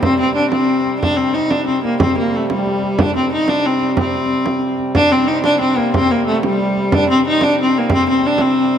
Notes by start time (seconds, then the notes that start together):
Already playing: C3 G3
0.03 C4, frame drum
0.20 C4
0.36 D4
0.51 C4, frame drum
0.69 frame drum
0.86 frame drum
1.01 C3 G3 D4, frame drum
1.17 C4
1.34 D#4
1.50 D4, frame drum
1.67 C4, frame drum
1.84 A#3, frame drum
2.00 C4, frame drum
2.18 A#3
2.36 A3
2.50 G3, frame drum
2.66 frame drum
2.83 frame drum
2.99 D4, frame drum
3.16 C4
3.33 D#4
3.48 D4, frame drum
3.64 C4, frame drum
3.81 frame drum
3.97 C4, frame drum
4.46 frame drum
4.62 frame drum
4.78 frame drum
4.94 C3 G3 D4, frame drum
5.12 C4
5.28 D#4
5.44 D4, frame drum
5.61 C4, frame drum
5.78 A#3, frame drum
5.94 C4, frame drum
6.11 A#3
6.27 A3
6.43 G3, frame drum
6.59 frame drum
6.76 frame drum
6.92 D4, frame drum
7.10 C4
7.27 D#4
7.41 D4, frame drum
7.61 C4
7.78 A#3
7.90 C4, frame drum
8.10 C4
8.23 D4, frame drum
8.38 C4, frame drum